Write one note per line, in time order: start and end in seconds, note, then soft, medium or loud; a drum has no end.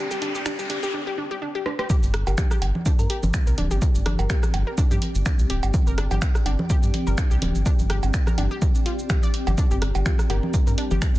0.00 0.94 C4 medium
0.00 0.97 D4 medium
0.00 0.94 G4 loud
0.00 0.94 D5 medium
0.00 0.94 G5 medium
0.00 riser medium
0.11 0.19 G1 loud
0.11 0.15 G4 loud
0.11 0.18 G4 medium
0.11 shaker soft
0.22 0.32 G1 loud
0.22 0.29 D4 medium
0.22 0.30 G4 medium
0.22 closed hi-hat medium
0.35 0.43 G1 loud
0.35 0.39 G4 loud
0.35 0.42 G4 medium
0.35 shaker soft
0.46 0.53 D4 medium
0.46 0.54 G4 medium
0.46 finger snap medium
0.46 shaker medium
0.59 0.66 G4 medium
0.59 0.63 G4 loud
0.59 shaker soft
0.70 0.80 G1 loud
0.70 0.77 D4 medium
0.70 0.78 G4 medium
0.70 closed hi-hat medium
0.83 0.90 G4 medium
0.83 0.87 G4 loud
0.83 shaker soft
0.94 1.01 D4 medium
1.07 1.11 G4 loud
1.18 1.25 D4 medium
1.31 1.35 G4 loud
1.42 1.49 D4 medium
1.55 1.59 G4 loud
1.66 1.73 D4 medium
1.66 cross-stick medium
1.79 1.83 G4 loud
1.79 cross-stick medium
1.90 11.19 C4 medium
1.90 1.97 G4 loud
1.90 kick loud
1.90 high conga soft
1.90 shaker medium
2.03 2.11 G1 loud
2.03 11.19 D5 loud
2.03 shaker soft
2.14 2.24 G1 loud
2.14 cross-stick medium
2.14 closed hi-hat loud
2.27 2.35 G1 loud
2.27 2.34 G4 medium
2.27 2.29 A#4 medium
2.27 cowbell medium
2.27 shaker soft
2.35 2.45 D4 medium
2.35 11.19 G4 medium
2.35 2.46 G4 medium
2.35 finger snap medium
2.35 kick loud
2.35 high conga medium
2.35 shaker medium
2.51 2.55 G4 loud
2.51 cross-stick medium
2.51 shaker soft
2.58 2.72 G1 loud
2.58 10.28 G5 medium
2.58 closed hi-hat loud
2.58 cowbell medium
2.75 high conga soft
2.86 2.89 D4 medium
2.86 kick loud
2.86 shaker medium
2.99 3.07 G2 medium
2.99 3.34 A#4 medium
2.99 shaker soft
3.10 3.17 G4 loud
3.10 closed hi-hat medium
3.23 3.31 G1 medium
3.23 high conga medium
3.23 shaker soft
3.34 finger snap medium
3.34 kick loud
3.34 shaker medium
3.47 3.55 C2 medium
3.47 3.49 A#4 medium
3.47 shaker soft
3.58 3.68 D1 loud
3.58 3.65 D4 medium
3.58 closed hi-hat medium
3.58 high conga soft
3.71 3.79 G1 medium
3.71 3.75 G4 loud
3.71 shaker soft
3.82 kick loud
3.82 shaker medium
3.95 4.03 G1 loud
3.95 shaker soft
4.06 4.16 G1 loud
4.06 4.09 D4 medium
4.06 cross-stick medium
4.06 closed hi-hat loud
4.06 high conga medium
4.19 4.27 G1 loud
4.19 4.67 A#4 medium
4.19 cowbell medium
4.19 shaker soft
4.30 4.37 G4 loud
4.30 finger snap loud
4.30 kick loud
4.30 shaker medium
4.43 cross-stick medium
4.43 high conga soft
4.43 shaker soft
4.54 4.64 G1 loud
4.54 closed hi-hat loud
4.54 cowbell loud
4.67 4.69 A#4 medium
4.78 4.85 D4 medium
4.78 kick loud
4.78 shaker medium
4.91 4.99 G2 medium
4.91 4.95 G4 loud
4.91 high conga medium
4.91 shaker soft
5.02 closed hi-hat medium
5.15 5.23 G1 loud
5.15 shaker soft
5.26 5.29 D4 medium
5.26 finger snap loud
5.26 kick loud
5.26 high conga soft
5.26 shaker medium
5.39 5.47 C2 medium
5.39 shaker soft
5.50 5.60 D1 loud
5.50 5.57 G4 loud
5.50 closed hi-hat medium
5.63 5.71 G1 medium
5.63 cowbell medium
5.63 shaker soft
5.74 kick loud
5.74 high conga medium
5.74 shaker medium
5.87 5.95 G1 loud
5.87 5.89 A#4 medium
5.87 shaker soft
5.98 6.08 G1 loud
5.98 6.05 D4 medium
5.98 cross-stick medium
5.98 closed hi-hat loud
6.11 6.19 G1 loud
6.11 6.15 G4 loud
6.11 cowbell medium
6.11 high conga soft
6.11 shaker soft
6.22 finger snap loud
6.22 kick loud
6.22 shaker medium
6.35 cross-stick medium
6.35 shaker soft
6.46 6.56 G1 loud
6.46 6.49 D4 medium
6.46 closed hi-hat loud
6.46 cowbell medium
6.59 high conga medium
6.70 6.77 G4 medium
6.70 kick loud
6.70 shaker medium
6.83 6.91 G2 medium
6.83 shaker soft
6.94 closed hi-hat loud
6.94 high conga soft
7.07 7.15 G1 loud
7.07 7.09 A#4 medium
7.07 shaker soft
7.18 7.25 D4 medium
7.18 finger snap loud
7.18 kick loud
7.18 shaker medium
7.31 7.39 C2 medium
7.31 7.35 G4 loud
7.31 shaker soft
7.42 7.52 D1 loud
7.42 closed hi-hat loud
7.42 high conga medium
7.55 7.63 G1 medium
7.55 shaker soft
7.66 7.69 D4 medium
7.66 kick loud
7.66 shaker medium
7.79 7.87 G1 loud
7.79 high conga soft
7.79 shaker soft
7.90 8.00 G1 loud
7.90 7.97 G4 loud
7.90 cross-stick medium
7.90 closed hi-hat loud
8.03 8.11 G1 loud
8.03 cowbell medium
8.03 shaker soft
8.14 finger snap medium
8.14 kick loud
8.14 shaker medium
8.27 8.29 A#4 medium
8.27 cross-stick medium
8.27 high conga medium
8.27 shaker soft
8.38 8.48 G1 loud
8.38 8.45 D4 medium
8.38 closed hi-hat loud
8.38 cowbell medium
8.51 8.55 G4 loud
8.62 kick loud
8.62 high conga soft
8.62 shaker medium
8.75 shaker soft
8.86 8.90 F4 medium
8.86 closed hi-hat medium
8.99 shaker soft
9.10 9.14 G4 medium
9.10 finger snap medium
9.10 kick loud
9.10 high conga medium
9.10 shaker medium
9.23 9.27 D5 loud
9.23 shaker soft
9.34 closed hi-hat medium
9.47 9.55 G1 loud
9.47 9.51 G4 medium
9.47 cowbell medium
9.47 high conga soft
9.47 shaker soft
9.58 9.65 D4 medium
9.58 kick loud
9.58 high conga soft
9.58 shaker medium
9.71 9.79 G1 loud
9.71 9.75 G4 loud
9.71 shaker soft
9.82 9.92 G1 loud
9.82 cross-stick medium
9.82 closed hi-hat medium
9.95 10.03 G1 loud
9.95 10.02 G4 medium
9.95 cowbell medium
9.95 shaker soft
10.06 10.10 F4 medium
10.06 10.14 G4 medium
10.06 finger snap medium
10.06 kick loud
10.06 high conga medium
10.06 shaker medium
10.19 cross-stick medium
10.19 shaker soft
10.26 10.40 G1 loud
10.26 10.37 G4 loud
10.26 10.50 A#4 medium
10.26 11.19 C6 medium
10.26 closed hi-hat medium
10.26 cowbell medium
10.43 high conga soft
10.54 kick loud
10.54 shaker medium
10.67 10.75 G2 medium
10.67 10.69 A#4 medium
10.67 shaker soft
10.78 10.85 D4 medium
10.78 closed hi-hat medium
10.91 10.99 G1 medium
10.91 10.95 G4 loud
10.91 high conga medium
10.91 shaker soft
11.02 finger snap medium
11.02 kick loud
11.02 shaker medium
11.15 11.19 C2 medium
11.15 shaker soft